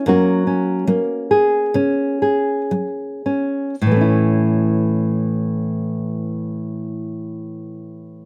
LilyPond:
\new Staff \with { instrumentName = "Nylon-string guitar" } { \time 4/4 \key a \major \tempo 4 = 54 << { <fis ais cis' fis'>8 cis'8 ais8 gis'8 cis'8 gis'4 cis'8 | <e a cis' e'>1 | } \\ { fis,4 fis4 cis4 fis4 | a,1 | } >> }